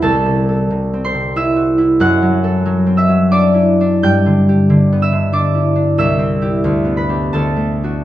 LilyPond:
\new Staff \with { instrumentName = "Harp" } { \time 3/4 \key g \major \tempo 4 = 92 << { <a' c'' e'' a'' b'' c''' e'''>4. <c'' c'''>8 <e'' e'''>4 | <fis'' fis'''>4. <e'' e'''>8 <d'' d'''>4 | <g'' g'''>4. <e'' e'''>8 <d'' d'''>4 | <e'' e'''>4. <b' b''>8 <a' a''>4 | } \\ { \tuplet 3/2 { <c, c' e'>8 c8 a'8 c8 c'8 c8 e'8 fis'8 e'8 } | \tuplet 3/2 { fis,8 fis8 a'8 fis8 c'8 fis8 d'8 e'8 d'8 } | \tuplet 3/2 { g,8 d8 g'8 d8 b8 d8 d'8 e'8 d'8 } | \tuplet 3/2 { c,8 c'8 <e' g'>8 d,8 b8 <d' g'>8 d,8 a8 <d' fis'>8 } | } >> }